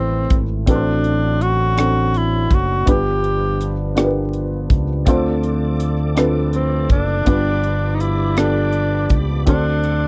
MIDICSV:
0, 0, Header, 1, 7, 480
1, 0, Start_track
1, 0, Tempo, 734394
1, 437, Time_signature, 6, 3, 24, 8
1, 6586, End_track
2, 0, Start_track
2, 0, Title_t, "Tonewheel organ"
2, 0, Program_c, 0, 16
2, 3303, Note_on_c, 0, 74, 50
2, 3305, Note_on_c, 0, 86, 53
2, 3308, Note_on_c, 0, 69, 47
2, 4731, Note_off_c, 0, 86, 0
2, 4737, Note_off_c, 0, 69, 0
2, 4739, Note_on_c, 0, 86, 58
2, 4740, Note_on_c, 0, 67, 48
2, 4745, Note_on_c, 0, 83, 45
2, 6164, Note_off_c, 0, 74, 0
2, 6173, Note_off_c, 0, 67, 0
2, 6173, Note_off_c, 0, 86, 0
2, 6176, Note_off_c, 0, 83, 0
2, 6187, Note_on_c, 0, 69, 47
2, 6187, Note_on_c, 0, 78, 52
2, 6190, Note_on_c, 0, 84, 52
2, 6190, Note_on_c, 0, 86, 60
2, 6586, Note_off_c, 0, 69, 0
2, 6586, Note_off_c, 0, 78, 0
2, 6586, Note_off_c, 0, 84, 0
2, 6586, Note_off_c, 0, 86, 0
2, 6586, End_track
3, 0, Start_track
3, 0, Title_t, "Grand piano"
3, 0, Program_c, 1, 0
3, 0, Control_c, 1, 64, 127
3, 0, Note_on_c, 1, 45, 46
3, 0, Note_on_c, 1, 60, 47
3, 0, Note_on_c, 1, 64, 43
3, 0, Note_on_c, 1, 67, 40
3, 0, Note_on_c, 1, 69, 44
3, 0, Note_on_c, 1, 71, 52
3, 0, Note_on_c, 1, 72, 65
3, 274, Note_off_c, 1, 60, 0
3, 278, Note_off_c, 1, 64, 0
3, 279, Note_off_c, 1, 67, 0
3, 281, Note_off_c, 1, 69, 0
3, 282, Note_off_c, 1, 71, 0
3, 433, Note_on_c, 1, 60, 63
3, 438, Note_on_c, 1, 62, 53
3, 442, Note_off_c, 1, 45, 0
3, 442, Note_on_c, 1, 45, 52
3, 442, Note_on_c, 1, 66, 54
3, 445, Note_off_c, 1, 72, 0
3, 445, Control_c, 1, 64, 0
3, 445, Note_on_c, 1, 69, 61
3, 451, Note_on_c, 1, 71, 52
3, 487, Note_off_c, 1, 71, 0
3, 492, Note_on_c, 1, 72, 71
3, 571, Control_c, 1, 64, 127
3, 997, Note_off_c, 1, 60, 0
3, 999, Note_off_c, 1, 62, 0
3, 1002, Note_off_c, 1, 66, 0
3, 1003, Note_off_c, 1, 69, 0
3, 1026, Note_off_c, 1, 72, 0
3, 1132, Note_off_c, 1, 45, 0
3, 1153, Note_on_c, 1, 60, 48
3, 1160, Note_on_c, 1, 62, 43
3, 1162, Note_on_c, 1, 66, 46
3, 1165, Note_on_c, 1, 69, 44
3, 1172, Note_on_c, 1, 72, 51
3, 1717, Note_off_c, 1, 60, 0
3, 1720, Note_off_c, 1, 62, 0
3, 1721, Note_off_c, 1, 66, 0
3, 1723, Note_off_c, 1, 69, 0
3, 1726, Note_off_c, 1, 72, 0
3, 1866, Note_on_c, 1, 59, 60
3, 1872, Note_on_c, 1, 62, 57
3, 1876, Note_on_c, 1, 65, 54
3, 1878, Note_on_c, 1, 43, 44
3, 1879, Note_on_c, 1, 67, 56
3, 1882, Note_on_c, 1, 71, 67
3, 1884, Control_c, 1, 64, 0
3, 1980, Control_c, 1, 64, 127
3, 2433, Note_off_c, 1, 59, 0
3, 2436, Note_off_c, 1, 62, 0
3, 2438, Note_off_c, 1, 65, 0
3, 2440, Note_off_c, 1, 67, 0
3, 2441, Note_off_c, 1, 71, 0
3, 2570, Note_off_c, 1, 43, 0
3, 2583, Note_on_c, 1, 59, 53
3, 2586, Note_on_c, 1, 62, 49
3, 2592, Note_on_c, 1, 65, 45
3, 2596, Note_on_c, 1, 67, 50
3, 2598, Note_on_c, 1, 70, 45
3, 2639, Note_off_c, 1, 70, 0
3, 2641, Note_on_c, 1, 71, 57
3, 3151, Note_off_c, 1, 59, 0
3, 3153, Note_off_c, 1, 62, 0
3, 3156, Note_off_c, 1, 65, 0
3, 3158, Note_off_c, 1, 67, 0
3, 3181, Note_off_c, 1, 71, 0
3, 3306, Note_on_c, 1, 60, 65
3, 3311, Note_on_c, 1, 62, 60
3, 3317, Note_on_c, 1, 50, 52
3, 3318, Note_on_c, 1, 65, 64
3, 3320, Note_on_c, 1, 69, 65
3, 3322, Control_c, 1, 64, 0
3, 3323, Note_on_c, 1, 72, 80
3, 3421, Control_c, 1, 64, 127
3, 3873, Note_off_c, 1, 60, 0
3, 3876, Note_off_c, 1, 62, 0
3, 3879, Note_off_c, 1, 65, 0
3, 3880, Note_off_c, 1, 69, 0
3, 3882, Note_off_c, 1, 72, 0
3, 4009, Note_off_c, 1, 50, 0
3, 4021, Note_on_c, 1, 60, 50
3, 4023, Note_on_c, 1, 62, 50
3, 4029, Note_on_c, 1, 65, 46
3, 4034, Note_on_c, 1, 69, 50
3, 4039, Note_on_c, 1, 71, 60
3, 4591, Note_off_c, 1, 60, 0
3, 4592, Note_off_c, 1, 62, 0
3, 4595, Note_off_c, 1, 65, 0
3, 4597, Note_off_c, 1, 69, 0
3, 4600, Note_off_c, 1, 71, 0
3, 4739, Note_on_c, 1, 59, 60
3, 4744, Note_on_c, 1, 62, 54
3, 4750, Note_on_c, 1, 43, 47
3, 4751, Note_on_c, 1, 65, 58
3, 4755, Note_on_c, 1, 67, 57
3, 4758, Note_on_c, 1, 71, 73
3, 4762, Control_c, 1, 64, 0
3, 4873, Control_c, 1, 64, 127
3, 5310, Note_off_c, 1, 59, 0
3, 5312, Note_off_c, 1, 62, 0
3, 5316, Note_off_c, 1, 65, 0
3, 5318, Note_off_c, 1, 67, 0
3, 5319, Note_off_c, 1, 71, 0
3, 5446, Note_off_c, 1, 43, 0
3, 5462, Note_on_c, 1, 59, 45
3, 5467, Note_on_c, 1, 65, 45
3, 5468, Note_on_c, 1, 62, 43
3, 5475, Note_on_c, 1, 67, 41
3, 5479, Note_on_c, 1, 69, 57
3, 6031, Note_off_c, 1, 59, 0
3, 6034, Note_off_c, 1, 65, 0
3, 6035, Note_off_c, 1, 62, 0
3, 6038, Note_off_c, 1, 67, 0
3, 6040, Note_off_c, 1, 69, 0
3, 6183, Note_on_c, 1, 60, 60
3, 6186, Note_on_c, 1, 62, 56
3, 6190, Note_on_c, 1, 66, 52
3, 6192, Note_on_c, 1, 50, 50
3, 6195, Note_on_c, 1, 69, 62
3, 6201, Note_on_c, 1, 72, 70
3, 6203, Control_c, 1, 64, 0
3, 6303, Control_c, 1, 64, 127
3, 6586, Note_off_c, 1, 50, 0
3, 6586, Note_off_c, 1, 60, 0
3, 6586, Note_off_c, 1, 62, 0
3, 6586, Note_off_c, 1, 66, 0
3, 6586, Note_off_c, 1, 69, 0
3, 6586, Note_off_c, 1, 72, 0
3, 6586, End_track
4, 0, Start_track
4, 0, Title_t, "Tenor saxophone"
4, 0, Program_c, 2, 66
4, 0, Note_on_c, 2, 60, 73
4, 267, Note_off_c, 2, 60, 0
4, 455, Note_on_c, 2, 62, 75
4, 931, Note_on_c, 2, 66, 88
4, 941, Note_off_c, 2, 62, 0
4, 1416, Note_on_c, 2, 64, 73
4, 1426, Note_off_c, 2, 66, 0
4, 1661, Note_on_c, 2, 66, 75
4, 1670, Note_off_c, 2, 64, 0
4, 1888, Note_off_c, 2, 66, 0
4, 1896, Note_on_c, 2, 67, 77
4, 2579, Note_off_c, 2, 67, 0
4, 4283, Note_on_c, 2, 60, 57
4, 4502, Note_off_c, 2, 60, 0
4, 4522, Note_on_c, 2, 62, 84
4, 5196, Note_on_c, 2, 63, 50
4, 5205, Note_off_c, 2, 62, 0
4, 5237, Note_on_c, 2, 64, 73
4, 5247, Note_off_c, 2, 63, 0
4, 5479, Note_on_c, 2, 62, 69
4, 5489, Note_off_c, 2, 64, 0
4, 6017, Note_off_c, 2, 62, 0
4, 6195, Note_on_c, 2, 62, 80
4, 6586, Note_off_c, 2, 62, 0
4, 6586, End_track
5, 0, Start_track
5, 0, Title_t, "French horn section"
5, 0, Program_c, 3, 60
5, 0, Note_on_c, 3, 55, 51
5, 0, Note_on_c, 3, 57, 52
5, 0, Note_on_c, 3, 60, 51
5, 0, Note_on_c, 3, 64, 66
5, 410, Note_off_c, 3, 55, 0
5, 414, Note_off_c, 3, 60, 0
5, 424, Note_off_c, 3, 64, 0
5, 447, Note_on_c, 3, 60, 49
5, 448, Note_on_c, 3, 62, 62
5, 449, Note_on_c, 3, 54, 59
5, 1849, Note_off_c, 3, 57, 0
5, 1866, Note_off_c, 3, 60, 0
5, 1867, Note_off_c, 3, 54, 0
5, 1884, Note_on_c, 3, 55, 54
5, 1885, Note_on_c, 3, 59, 51
5, 1886, Note_on_c, 3, 53, 62
5, 3305, Note_off_c, 3, 55, 0
5, 3305, Note_off_c, 3, 59, 0
5, 3315, Note_on_c, 3, 57, 53
5, 3316, Note_on_c, 3, 60, 54
5, 4741, Note_off_c, 3, 57, 0
5, 4741, Note_off_c, 3, 60, 0
5, 4743, Note_on_c, 3, 55, 54
5, 4746, Note_on_c, 3, 59, 54
5, 6175, Note_off_c, 3, 53, 0
5, 6175, Note_off_c, 3, 55, 0
5, 6175, Note_off_c, 3, 62, 0
5, 6177, Note_off_c, 3, 59, 0
5, 6194, Note_on_c, 3, 57, 60
5, 6195, Note_on_c, 3, 62, 64
5, 6196, Note_on_c, 3, 60, 60
5, 6197, Note_on_c, 3, 54, 57
5, 6586, Note_off_c, 3, 54, 0
5, 6586, Note_off_c, 3, 57, 0
5, 6586, Note_off_c, 3, 60, 0
5, 6586, Note_off_c, 3, 62, 0
5, 6586, End_track
6, 0, Start_track
6, 0, Title_t, "Fingered electric bass"
6, 0, Program_c, 4, 33
6, 0, Note_on_c, 4, 33, 77
6, 171, Note_off_c, 4, 33, 0
6, 201, Note_on_c, 4, 32, 79
6, 420, Note_off_c, 4, 32, 0
6, 439, Note_on_c, 4, 33, 83
6, 1610, Note_off_c, 4, 33, 0
6, 1640, Note_on_c, 4, 30, 72
6, 1859, Note_off_c, 4, 30, 0
6, 1878, Note_on_c, 4, 31, 74
6, 3050, Note_off_c, 4, 31, 0
6, 3072, Note_on_c, 4, 37, 66
6, 3294, Note_off_c, 4, 37, 0
6, 3311, Note_on_c, 4, 38, 74
6, 4487, Note_off_c, 4, 38, 0
6, 4506, Note_on_c, 4, 30, 71
6, 4731, Note_off_c, 4, 30, 0
6, 4746, Note_on_c, 4, 31, 81
6, 5925, Note_off_c, 4, 31, 0
6, 5947, Note_on_c, 4, 37, 70
6, 6172, Note_off_c, 4, 37, 0
6, 6188, Note_on_c, 4, 38, 86
6, 6586, Note_off_c, 4, 38, 0
6, 6586, End_track
7, 0, Start_track
7, 0, Title_t, "Drums"
7, 196, Note_on_c, 9, 42, 40
7, 199, Note_on_c, 9, 36, 78
7, 262, Note_off_c, 9, 42, 0
7, 264, Note_off_c, 9, 36, 0
7, 439, Note_on_c, 9, 42, 83
7, 440, Note_on_c, 9, 36, 77
7, 505, Note_off_c, 9, 42, 0
7, 506, Note_off_c, 9, 36, 0
7, 680, Note_on_c, 9, 42, 37
7, 746, Note_off_c, 9, 42, 0
7, 923, Note_on_c, 9, 42, 44
7, 988, Note_off_c, 9, 42, 0
7, 1161, Note_on_c, 9, 42, 64
7, 1167, Note_on_c, 9, 37, 88
7, 1226, Note_off_c, 9, 42, 0
7, 1233, Note_off_c, 9, 37, 0
7, 1400, Note_on_c, 9, 42, 38
7, 1466, Note_off_c, 9, 42, 0
7, 1637, Note_on_c, 9, 42, 42
7, 1638, Note_on_c, 9, 36, 77
7, 1703, Note_off_c, 9, 36, 0
7, 1703, Note_off_c, 9, 42, 0
7, 1876, Note_on_c, 9, 42, 81
7, 1877, Note_on_c, 9, 36, 89
7, 1941, Note_off_c, 9, 42, 0
7, 1943, Note_off_c, 9, 36, 0
7, 2118, Note_on_c, 9, 42, 36
7, 2183, Note_off_c, 9, 42, 0
7, 2357, Note_on_c, 9, 42, 39
7, 2423, Note_off_c, 9, 42, 0
7, 2593, Note_on_c, 9, 42, 59
7, 2599, Note_on_c, 9, 37, 81
7, 2658, Note_off_c, 9, 42, 0
7, 2665, Note_off_c, 9, 37, 0
7, 2833, Note_on_c, 9, 42, 33
7, 2898, Note_off_c, 9, 42, 0
7, 3071, Note_on_c, 9, 42, 40
7, 3072, Note_on_c, 9, 36, 76
7, 3136, Note_off_c, 9, 42, 0
7, 3138, Note_off_c, 9, 36, 0
7, 3310, Note_on_c, 9, 42, 75
7, 3312, Note_on_c, 9, 36, 84
7, 3375, Note_off_c, 9, 42, 0
7, 3377, Note_off_c, 9, 36, 0
7, 3552, Note_on_c, 9, 42, 35
7, 3617, Note_off_c, 9, 42, 0
7, 3790, Note_on_c, 9, 42, 41
7, 3855, Note_off_c, 9, 42, 0
7, 4030, Note_on_c, 9, 42, 64
7, 4037, Note_on_c, 9, 37, 80
7, 4096, Note_off_c, 9, 42, 0
7, 4102, Note_off_c, 9, 37, 0
7, 4268, Note_on_c, 9, 42, 36
7, 4333, Note_off_c, 9, 42, 0
7, 4506, Note_on_c, 9, 42, 40
7, 4509, Note_on_c, 9, 36, 82
7, 4572, Note_off_c, 9, 42, 0
7, 4574, Note_off_c, 9, 36, 0
7, 4747, Note_on_c, 9, 42, 79
7, 4750, Note_on_c, 9, 36, 73
7, 4812, Note_off_c, 9, 42, 0
7, 4815, Note_off_c, 9, 36, 0
7, 4990, Note_on_c, 9, 42, 34
7, 5055, Note_off_c, 9, 42, 0
7, 5230, Note_on_c, 9, 42, 43
7, 5296, Note_off_c, 9, 42, 0
7, 5469, Note_on_c, 9, 42, 60
7, 5475, Note_on_c, 9, 37, 89
7, 5534, Note_off_c, 9, 42, 0
7, 5541, Note_off_c, 9, 37, 0
7, 5703, Note_on_c, 9, 42, 32
7, 5768, Note_off_c, 9, 42, 0
7, 5945, Note_on_c, 9, 42, 39
7, 5949, Note_on_c, 9, 36, 76
7, 6010, Note_off_c, 9, 42, 0
7, 6014, Note_off_c, 9, 36, 0
7, 6187, Note_on_c, 9, 42, 73
7, 6190, Note_on_c, 9, 36, 82
7, 6253, Note_off_c, 9, 42, 0
7, 6256, Note_off_c, 9, 36, 0
7, 6429, Note_on_c, 9, 42, 35
7, 6494, Note_off_c, 9, 42, 0
7, 6586, End_track
0, 0, End_of_file